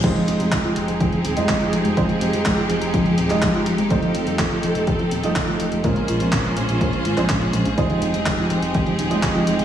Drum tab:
CC |x---------------|----------------|----------------|----------------|
HH |xxxxxxxxxxxxxxxx|xxxxxxxxxxxxxxxx|xxxxxxxxxxxxxxxx|xxxxxxxxxxxxxxxx|
CP |----x-------x---|----x------xx---|----x-------x---|----x------xx---|
BD |o---o---o---o---|o---o---o---o---|o---o---o---o---|o---o---o---o---|

CC |----------------|
HH |xxxxxxxxxxxxxxxx|
CP |----x-------x---|
BD |o---o---o---o---|